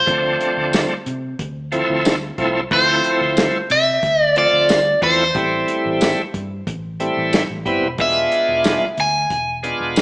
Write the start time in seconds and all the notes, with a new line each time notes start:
Already playing: C5
0.06 D2 F3 A3 C4 D4, kick, closed hi-hat
0.41 closed hi-hat
0.57 D2
0.73 snare, closed hi-hat, tambourine
1.06 C3, closed hi-hat
1.39 D2, kick, closed hi-hat
1.72 F3 A3 C4 E4, closed hi-hat
1.90 D2
2.05 snare, closed hi-hat, tambourine
2.38 C2 F3 A3 C4 E4, kick, closed hi-hat
2.71 D2 F3 A3 C4 E4 C5, kick, closed hi-hat
3.04 closed hi-hat
3.21 D2
3.37 snare, closed hi-hat, tambourine
3.70 C3 E5, closed hi-hat
4.03 D2, kick, closed hi-hat
4.23 D5
4.36 F3 A3 C4 F4 D5, closed hi-hat
4.53 D2
4.69 snare, closed hi-hat, tambourine
5.02 E2 F3 A3 C4 E4 C5, kick, closed hi-hat
5.35 A1 G3 A3 C4 E4, kick, closed hi-hat
5.68 closed hi-hat
5.85 A1
6.01 snare, closed hi-hat, tambourine
6.34 G2, kick, closed hi-hat
6.67 A1, kick, closed hi-hat
7.00 G3 A3 C4 E4, closed hi-hat
7.17 A1
7.33 snare, closed hi-hat, tambourine
7.50 A1
7.66 G1 G3 B3 C4 E4, kick, closed hi-hat
7.83 E1
7.98 E1 G#3 B3 D4 F4 E5, kick, closed hi-hat
8.32 closed hi-hat
8.48 E1
8.64 snare, closed hi-hat, tambourine
8.97 D2 G#5, closed hi-hat
9.30 E1, kick, closed hi-hat
9.63 G#3 B3 D4 F4, closed hi-hat
9.80 E1
9.96 snare, closed hi-hat, tambourine